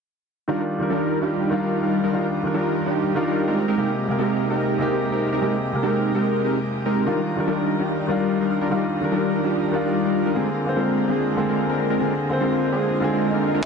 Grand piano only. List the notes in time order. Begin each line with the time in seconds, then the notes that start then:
0.48 D#3 G3 D4 F4
0.78 D#3 G3 D4 A#4
1.49 D#3 G3 D4 F4
2.12 D#3 G3 D4 F4
2.43 D#3 G3 D4
2.47 A#4
3.15 D#3 G3 D4 F4
3.76 C3 G#3 A#3 G4
4.07 C3 G#3 A#3
4.11 A#4
4.78 C3 G#3 A#3 G4
5.41 C3 G#3 A#3 G4
5.72 C3 G#3 A#3 A#4
7.05 D#3 G3 D4 F4
7.36 D#3 G3 D4
7.40 A#4
8.07 D#3 G3 D4 F4
8.70 D#3 G3 D4 F4
9.00 D#3 G3 D4 A#4
9.71 D#3 G3 D4 F4
10.34 D3 A#3 C4 G#4
10.65 D3 A#3 C4 C5
11.36 D3 A#3 C4
11.40 G#4
11.98 D3 A#3 C4 G#4
12.29 D3 A#3 C4
12.33 C5
13.00 D3 A#3 C4 G#4